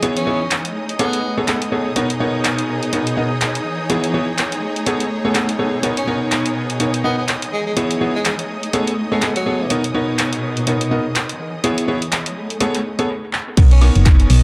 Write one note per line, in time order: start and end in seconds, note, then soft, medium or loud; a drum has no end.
0.00 0.75 E3 medium
0.00 0.24 B3 medium
0.00 13.09 D#4 medium
0.00 0.24 E4 medium
0.00 13.09 G#4 medium
0.00 0.24 G#4 medium
0.00 13.09 C#5 medium
0.00 0.24 C#5 loud
0.00 5.82 D#5 medium
0.00 5.82 D#6 medium
0.00 closed hi-hat medium
0.17 0.65 C#4 medium
0.17 closed hi-hat soft
0.27 0.38 B3 medium
0.27 0.38 E4 medium
0.27 0.38 G#4 medium
0.27 0.38 C#5 medium
0.51 clap loud
0.51 closed hi-hat medium
0.65 closed hi-hat medium
0.75 1.96 A3 medium
0.89 closed hi-hat soft
0.99 1.38 B3 medium
0.99 1.16 B3 medium
0.99 1.16 G#4 medium
0.99 1.16 A4 medium
0.99 1.16 C#5 loud
0.99 closed hi-hat medium
1.13 closed hi-hat soft
1.38 1.46 B3 medium
1.38 1.46 G#4 medium
1.38 1.46 A4 medium
1.38 1.46 C#5 medium
1.48 1.59 B3 medium
1.48 1.59 G#4 medium
1.48 1.59 A4 medium
1.48 1.59 F#5 medium
1.48 clap loud
1.48 closed hi-hat medium
1.62 closed hi-hat soft
1.72 1.89 B3 medium
1.72 1.89 G#4 medium
1.72 1.89 A4 medium
1.72 1.89 C#5 medium
1.96 3.65 B2 medium
1.96 2.07 B3 medium
1.96 2.07 D#4 medium
1.96 2.07 A#4 medium
1.96 2.07 C#5 loud
1.96 closed hi-hat medium
2.10 closed hi-hat soft
2.20 2.90 B3 medium
2.20 2.90 D#4 medium
2.20 2.90 A#4 medium
2.20 2.90 C#5 loud
2.44 clap loud
2.44 closed hi-hat medium
2.58 closed hi-hat soft
2.83 closed hi-hat soft
2.93 3.15 B3 medium
2.93 3.15 D#4 medium
2.93 3.15 A#4 medium
2.93 3.15 C#5 medium
2.93 closed hi-hat medium
3.07 closed hi-hat soft
3.17 3.28 B3 medium
3.17 3.28 D#4 medium
3.17 3.28 A#4 medium
3.17 3.28 D#5 medium
3.41 clap loud
3.41 closed hi-hat medium
3.55 closed hi-hat soft
3.66 4.62 E3 medium
3.90 4.11 B3 medium
3.90 4.11 E4 medium
3.90 4.11 G#4 medium
3.90 4.11 C#5 loud
3.90 closed hi-hat medium
4.04 closed hi-hat soft
4.14 4.25 B3 medium
4.14 4.25 E4 medium
4.14 4.25 G#4 medium
4.14 4.25 C#5 medium
4.38 clap loud
4.38 closed hi-hat medium
4.52 closed hi-hat soft
4.62 5.83 A3 medium
4.76 closed hi-hat soft
4.86 5.03 B3 medium
4.86 5.03 G#4 medium
4.86 5.03 A4 medium
4.86 5.03 C#5 loud
4.86 closed hi-hat medium
5.00 closed hi-hat soft
5.25 5.33 B3 medium
5.25 5.33 G#4 medium
5.25 5.33 A4 medium
5.25 5.33 C#5 loud
5.35 5.46 B3 medium
5.35 5.46 G#4 medium
5.35 5.46 A4 medium
5.35 5.46 F#5 medium
5.35 clap loud
5.35 closed hi-hat medium
5.49 closed hi-hat soft
5.59 5.76 B3 medium
5.59 5.76 G#4 medium
5.59 5.76 A4 medium
5.59 5.76 C#5 medium
5.83 7.53 B2 medium
5.83 5.95 B3 medium
5.83 5.95 D#4 medium
5.83 5.95 A#4 medium
5.83 5.95 C#5 loud
5.83 13.09 D#5 medium
5.83 13.09 D#6 medium
5.83 closed hi-hat medium
5.97 6.17 C#4 medium
5.97 closed hi-hat soft
6.07 6.78 B3 medium
6.07 6.78 D#4 medium
6.07 6.78 A#4 medium
6.07 6.78 C#5 loud
6.32 clap loud
6.32 closed hi-hat medium
6.46 closed hi-hat soft
6.70 closed hi-hat soft
6.80 7.02 B3 medium
6.80 7.02 D#4 medium
6.80 7.02 A#4 medium
6.80 7.02 C#5 medium
6.80 closed hi-hat medium
6.94 closed hi-hat soft
7.04 7.13 B3 medium
7.04 7.15 B3 medium
7.04 7.15 D#4 medium
7.04 7.15 A#4 medium
7.04 7.15 D#5 medium
7.18 7.25 B3 medium
7.28 clap loud
7.28 closed hi-hat medium
7.42 closed hi-hat soft
7.52 8.49 E3 medium
7.52 7.62 G#3 medium
7.66 7.73 G#3 medium
7.77 7.98 B3 medium
7.77 7.98 E4 medium
7.77 7.98 G#4 medium
7.77 7.98 C#5 loud
7.77 closed hi-hat medium
7.91 closed hi-hat medium
8.01 8.12 B3 medium
8.01 8.12 E4 medium
8.01 8.12 G#4 medium
8.01 8.12 C#5 medium
8.15 8.21 G#3 medium
8.25 8.34 G#3 medium
8.25 clap loud
8.25 closed hi-hat medium
8.39 closed hi-hat soft
8.49 9.70 A3 medium
8.63 closed hi-hat soft
8.73 8.90 B3 medium
8.73 8.90 G#4 medium
8.73 8.90 A4 medium
8.73 8.90 C#5 loud
8.73 closed hi-hat medium
8.87 closed hi-hat soft
9.12 9.18 G#3 medium
9.12 9.20 B3 medium
9.12 9.20 G#4 medium
9.12 9.20 A4 medium
9.12 9.20 C#5 loud
9.22 9.31 G#3 medium
9.22 9.33 B3 medium
9.22 9.33 G#4 medium
9.22 9.33 A4 medium
9.22 9.33 F#5 medium
9.22 clap loud
9.22 closed hi-hat medium
9.36 9.76 F#3 medium
9.36 closed hi-hat soft
9.46 9.63 B3 medium
9.46 9.63 G#4 medium
9.46 9.63 A4 medium
9.46 9.63 C#5 medium
9.70 11.40 B2 medium
9.70 9.82 B3 medium
9.70 9.82 D#4 medium
9.70 9.82 A#4 medium
9.70 9.82 C#5 loud
9.70 closed hi-hat medium
9.84 closed hi-hat medium
9.94 10.65 B3 medium
9.94 10.65 D#4 medium
9.94 10.65 A#4 medium
9.94 10.65 C#5 loud
10.19 clap loud
10.19 closed hi-hat medium
10.33 closed hi-hat medium
10.57 closed hi-hat soft
10.67 10.89 B3 medium
10.67 10.89 D#4 medium
10.67 10.89 A#4 medium
10.67 10.89 C#5 medium
10.67 closed hi-hat medium
10.81 closed hi-hat medium
10.91 11.03 B3 medium
10.91 11.03 D#4 medium
10.91 11.03 A#4 medium
10.91 11.03 D#5 medium
11.15 clap loud
11.15 closed hi-hat medium
11.29 closed hi-hat soft
11.39 12.36 E3 medium
11.64 11.86 B3 medium
11.64 11.86 E4 medium
11.64 11.86 G#4 medium
11.64 11.86 C#5 loud
11.64 closed hi-hat medium
11.78 closed hi-hat medium
11.88 11.99 B3 medium
11.88 11.99 E4 medium
11.88 11.99 G#4 medium
11.88 11.99 C#5 loud
12.02 closed hi-hat soft
12.12 clap loud
12.12 closed hi-hat medium
12.26 closed hi-hat medium
12.36 13.09 A3 medium
12.50 closed hi-hat soft
12.60 12.78 B3 loud
12.60 12.78 G#4 medium
12.60 12.78 A4 medium
12.60 12.78 C#5 loud
12.60 closed hi-hat medium
12.75 clap soft
12.75 closed hi-hat medium
12.99 13.07 B3 medium
12.99 13.07 G#4 medium
12.99 13.07 A4 medium
12.99 13.07 C#5 loud
12.99 closed hi-hat soft
13.33 clap medium
13.57 13.90 B1 loud
13.57 13.69 B3 medium
13.57 13.69 D#4 medium
13.57 13.69 A#4 medium
13.57 13.69 C#5 loud
13.57 14.43 D#5 medium
13.57 14.43 D#6 medium
13.57 kick loud
13.57 closed hi-hat medium
13.57 crash loud
13.71 13.91 C#4 medium
13.71 closed hi-hat medium
13.81 14.43 B3 loud
13.81 14.43 D#4 medium
13.81 14.43 A#4 medium
13.81 14.43 C#5 loud
13.81 open hi-hat loud
13.81 high woodblock medium
13.95 14.26 F#1 medium
13.95 closed hi-hat soft
14.06 kick loud
14.06 clap loud
14.06 closed hi-hat medium
14.20 closed hi-hat medium
14.30 14.43 B1 medium
14.30 open hi-hat loud